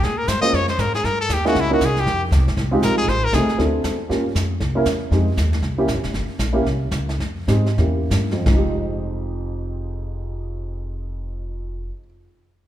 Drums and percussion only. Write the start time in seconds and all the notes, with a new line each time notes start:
0.03 brush sweep, kick, snare
0.28 kick, snare, hi-hat pedal
0.43 snare
0.53 brush sweep, kick, snare
0.68 snare
0.78 kick, snare, hi-hat pedal
0.94 snare
1.04 brush sweep, kick, snare
1.29 kick, snare, hi-hat pedal
1.46 snare
1.55 brush sweep, kick, snare
1.81 kick, snare, hi-hat pedal
1.97 snare
2.06 brush sweep, kick, snare
2.32 kick, snare, hi-hat pedal
2.48 snare
2.57 brush sweep, kick, snare
2.83 kick, snare, hi-hat pedal
3.08 brush sweep, kick, snare
3.33 kick, snare, hi-hat pedal
3.49 snare
3.59 brush sweep, kick, snare
3.84 kick, snare, hi-hat pedal
4.10 brush sweep, kick, snare
4.35 kick, snare, hi-hat pedal
4.60 brush sweep, kick, snare
4.86 kick, snare, hi-hat pedal
5.11 brush sweep, kick, snare
5.37 kick, snare, hi-hat pedal
5.53 snare
5.62 brush sweep, kick, snare
5.88 kick, snare, hi-hat pedal
6.04 snare
6.13 brush sweep, kick, snare
6.39 kick, snare, hi-hat pedal
6.65 brush sweep, kick, snare
6.91 kick, snare, hi-hat pedal
7.09 snare
7.19 brush sweep, kick, snare
7.48 kick, snare, hi-hat pedal
7.66 snare
7.78 brush sweep, kick, snare
8.11 kick, snare, hi-hat pedal
8.31 snare
8.46 kick, snare